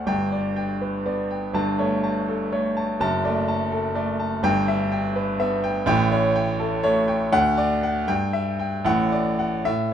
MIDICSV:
0, 0, Header, 1, 2, 480
1, 0, Start_track
1, 0, Key_signature, 2, "major"
1, 0, Tempo, 489796
1, 71, Time_signature, 6, 3, 24, 8
1, 2470, Tempo, 481155
1, 7270, Tempo, 504626
1, 8230, Tempo, 525394
1, 9686, End_track
2, 0, Start_track
2, 0, Title_t, "Grand piano"
2, 0, Program_c, 0, 0
2, 0, Control_c, 0, 64, 127
2, 0, Note_on_c, 0, 38, 83
2, 0, Note_on_c, 0, 78, 54
2, 59, Note_on_c, 0, 31, 78
2, 68, Note_on_c, 0, 43, 80
2, 68, Note_on_c, 0, 79, 99
2, 91, Control_c, 0, 64, 0
2, 99, Note_off_c, 0, 38, 0
2, 100, Note_off_c, 0, 78, 0
2, 223, Control_c, 0, 64, 127
2, 314, Note_on_c, 0, 74, 71
2, 452, Note_off_c, 0, 79, 0
2, 552, Note_on_c, 0, 79, 71
2, 694, Note_off_c, 0, 74, 0
2, 799, Note_on_c, 0, 71, 56
2, 935, Note_off_c, 0, 79, 0
2, 1035, Note_on_c, 0, 59, 68
2, 1038, Note_on_c, 0, 74, 65
2, 1180, Note_off_c, 0, 71, 0
2, 1226, Note_off_c, 0, 59, 0
2, 1279, Note_on_c, 0, 79, 56
2, 1420, Note_off_c, 0, 74, 0
2, 1468, Note_off_c, 0, 31, 0
2, 1472, Note_off_c, 0, 43, 0
2, 1504, Note_on_c, 0, 31, 85
2, 1514, Note_on_c, 0, 43, 86
2, 1515, Note_on_c, 0, 81, 93
2, 1516, Note_off_c, 0, 79, 0
2, 1531, Control_c, 0, 64, 0
2, 1700, Control_c, 0, 64, 127
2, 1753, Note_on_c, 0, 57, 69
2, 1755, Note_on_c, 0, 73, 72
2, 1897, Note_off_c, 0, 81, 0
2, 1945, Note_off_c, 0, 57, 0
2, 1994, Note_on_c, 0, 81, 69
2, 2138, Note_off_c, 0, 73, 0
2, 2237, Note_on_c, 0, 69, 65
2, 2376, Note_off_c, 0, 81, 0
2, 2473, Note_on_c, 0, 73, 79
2, 2475, Note_on_c, 0, 57, 69
2, 2617, Note_off_c, 0, 69, 0
2, 2665, Note_off_c, 0, 57, 0
2, 2717, Note_on_c, 0, 81, 67
2, 2856, Note_off_c, 0, 73, 0
2, 2906, Note_off_c, 0, 31, 0
2, 2912, Note_off_c, 0, 43, 0
2, 2942, Note_off_c, 0, 81, 0
2, 2945, Note_on_c, 0, 30, 87
2, 2955, Note_on_c, 0, 42, 96
2, 2957, Note_on_c, 0, 81, 111
2, 2971, Control_c, 0, 64, 0
2, 3130, Control_c, 0, 64, 127
2, 3196, Note_on_c, 0, 57, 75
2, 3196, Note_on_c, 0, 74, 80
2, 3336, Note_off_c, 0, 81, 0
2, 3383, Note_off_c, 0, 57, 0
2, 3430, Note_on_c, 0, 81, 77
2, 3572, Note_off_c, 0, 74, 0
2, 3667, Note_on_c, 0, 69, 71
2, 3808, Note_off_c, 0, 81, 0
2, 3900, Note_on_c, 0, 74, 73
2, 3901, Note_on_c, 0, 57, 78
2, 4047, Note_off_c, 0, 69, 0
2, 4092, Note_off_c, 0, 57, 0
2, 4141, Note_on_c, 0, 81, 74
2, 4284, Note_off_c, 0, 74, 0
2, 4338, Note_off_c, 0, 30, 0
2, 4343, Note_off_c, 0, 42, 0
2, 4374, Note_on_c, 0, 31, 104
2, 4381, Note_off_c, 0, 81, 0
2, 4383, Note_on_c, 0, 43, 98
2, 4383, Note_on_c, 0, 79, 127
2, 4398, Control_c, 0, 64, 0
2, 4581, Control_c, 0, 64, 127
2, 4627, Note_on_c, 0, 76, 88
2, 4771, Note_off_c, 0, 79, 0
2, 4862, Note_on_c, 0, 79, 82
2, 5012, Note_off_c, 0, 76, 0
2, 5103, Note_on_c, 0, 71, 74
2, 5247, Note_off_c, 0, 79, 0
2, 5340, Note_on_c, 0, 59, 78
2, 5340, Note_on_c, 0, 76, 89
2, 5486, Note_off_c, 0, 71, 0
2, 5533, Note_off_c, 0, 59, 0
2, 5579, Note_on_c, 0, 79, 92
2, 5725, Note_off_c, 0, 76, 0
2, 5780, Note_off_c, 0, 31, 0
2, 5784, Note_off_c, 0, 43, 0
2, 5797, Note_off_c, 0, 79, 0
2, 5802, Note_on_c, 0, 33, 118
2, 5812, Note_on_c, 0, 79, 126
2, 5813, Note_on_c, 0, 45, 120
2, 5841, Control_c, 0, 64, 0
2, 6028, Control_c, 0, 64, 127
2, 6060, Note_on_c, 0, 73, 98
2, 6201, Note_off_c, 0, 79, 0
2, 6296, Note_on_c, 0, 79, 95
2, 6442, Note_off_c, 0, 73, 0
2, 6535, Note_on_c, 0, 69, 82
2, 6682, Note_off_c, 0, 79, 0
2, 6774, Note_on_c, 0, 73, 107
2, 6776, Note_on_c, 0, 57, 88
2, 6926, Note_off_c, 0, 69, 0
2, 6975, Note_off_c, 0, 57, 0
2, 7018, Note_on_c, 0, 79, 80
2, 7169, Note_off_c, 0, 73, 0
2, 7220, Note_off_c, 0, 33, 0
2, 7226, Note_off_c, 0, 45, 0
2, 7262, Note_on_c, 0, 38, 116
2, 7263, Note_on_c, 0, 78, 127
2, 7266, Note_off_c, 0, 79, 0
2, 7287, Control_c, 0, 64, 0
2, 7444, Control_c, 0, 64, 127
2, 7501, Note_on_c, 0, 74, 97
2, 7643, Note_off_c, 0, 78, 0
2, 7746, Note_on_c, 0, 78, 86
2, 7886, Note_off_c, 0, 74, 0
2, 7959, Note_off_c, 0, 38, 0
2, 7981, Note_on_c, 0, 43, 90
2, 7981, Note_on_c, 0, 79, 107
2, 7987, Note_off_c, 0, 78, 0
2, 8003, Control_c, 0, 64, 0
2, 8191, Control_c, 0, 64, 127
2, 8222, Note_on_c, 0, 76, 86
2, 8370, Note_off_c, 0, 79, 0
2, 8461, Note_on_c, 0, 79, 80
2, 8605, Note_off_c, 0, 76, 0
2, 8681, Note_off_c, 0, 43, 0
2, 8690, Note_on_c, 0, 33, 102
2, 8700, Note_on_c, 0, 45, 95
2, 8701, Note_on_c, 0, 78, 110
2, 8702, Note_off_c, 0, 79, 0
2, 8724, Control_c, 0, 64, 0
2, 8879, Control_c, 0, 64, 127
2, 8942, Note_on_c, 0, 74, 87
2, 9090, Note_off_c, 0, 78, 0
2, 9188, Note_on_c, 0, 78, 80
2, 9332, Note_off_c, 0, 74, 0
2, 9400, Note_off_c, 0, 33, 0
2, 9405, Note_off_c, 0, 45, 0
2, 9426, Note_on_c, 0, 45, 86
2, 9428, Note_on_c, 0, 76, 104
2, 9429, Note_off_c, 0, 78, 0
2, 9447, Control_c, 0, 64, 0
2, 9598, Control_c, 0, 64, 127
2, 9686, Note_off_c, 0, 45, 0
2, 9686, Note_off_c, 0, 76, 0
2, 9686, End_track
0, 0, End_of_file